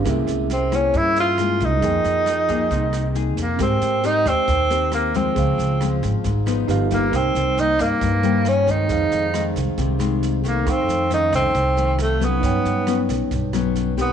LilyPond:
<<
  \new Staff \with { instrumentName = "Tine electric piano" } { \time 4/4 \key f \minor \tempo 4 = 136 <des' aes' bes' e''>1 | <ees' aes' bes' g''>1 | <c' bes' g''>1 | <aes' c'' f''>2. <dis' g' b' f''>4 |
<ees' bes' c'' g''>2~ <ees' bes' c'' g''>8 <ees' bes' c'' g''>4. | <ees' aes' c'' f''>1 | <ees' a' f'' des'''>1 | <ees' b' des'' g''>1 | }
  \new Staff \with { instrumentName = "Tenor saxophone" } { \time 4/4 \key f \minor r4 c'8 des'8 e'8 f'4 ees'8~ | ees'2. r8 bes8 | c'4 ees'8 c'4. bes8 c'8~ | c'4. r2 ais8 |
c'4 ees'8 bes4. des'8 ees'8~ | ees'4. r2 bes8 | c'4 ees'8 c'4. a8 b8~ | b4. r2 b8 | }
  \new Staff \with { instrumentName = "Nylon-string guitar" } { \time 4/4 \key f \minor << { <aes bes e'>4 r8 <bes e'>4. <aes bes e'>4 | <bes ees' aes'>4 r8 <bes ees' aes'>4. <bes ees' aes'>8 r8 | <c' g' bes'>4 <c' g' bes'>4 r8 <c' g' bes'>4 <f aes c'>8~ | <f aes c'>4 <f aes c'>4 r8 <f b ees'>4 <g ais dis'>8~ |
<g ais dis'>4 <g bes ees'>4. <g bes ees'>4 <ees aes c'>8~ | <ees aes c'>4 <ees aes c'>4. <ees aes c'>4 <ees a>8~ | <ees a>4 <ees a des'>4 r8 <ees a>4 <ges b des'>8~ | <ges b des'>4 <fis b des'>4 r8 <fis b des'>4 <c' g' bes'>8 | } \\ { c2 r2 | f2 c2 | aes2 ees2 | des2 aes,4 r4 |
c2 g,2 | f,2 c2 | f,2 c2 | g,2 g,2 | } >> }
  \new Staff \with { instrumentName = "Upright bass" } { \clef bass \time 4/4 \key f \minor c,8 c,4. g,4. c,8 | f,8 f,4. c,4. f,8 | aes,8 aes,4 ees,16 r16 ees,2 | des,8 des,4 aes,,16 r16 aes,,4 g,,4 |
c,8 c,4 g,16 r16 g,2 | f,8 f,4 c,16 r16 c,2 | f,8 f,4 c,16 r16 c,2 | g,8 g,4 b,,16 r16 b,,2 | }
  \new DrumStaff \with { instrumentName = "Drums" } \drummode { \time 4/4 <bd ss sn>8 sn8 sn8 <bd ss sn>8 <bd sn>8 sn8 <ss sn>8 <bd sn>8 | <bd sn>8 sn8 <ss sn>8 <bd sn>8 <bd sn>8 <ss sn>8 sn8 <bd sn>8 | <bd ss sn>8 sn8 sn8 <bd ss sn>8 <bd sn>8 sn8 <ss sn>8 <bd sn>8 | <bd sn>8 sn8 <ss sn>8 <bd sn>8 <bd sn>8 <ss sn>8 sn8 <bd sn>8 |
<bd ss sn>8 sn8 sn8 <bd ss sn>8 <bd sn>8 sn8 <ss sn>8 <bd sn>8 | <bd sn>8 sn8 <ss sn>8 <bd sn>8 <bd sn>8 <ss sn>8 sn8 <bd sn>8 | <bd ss sn>8 sn8 sn8 <bd ss sn>8 <bd sn>8 sn8 <ss sn>8 <bd sn>8 | <bd sn>8 sn8 <ss sn>8 <bd sn>8 <bd sn>8 <ss sn>8 sn8 <bd sn>8 | }
>>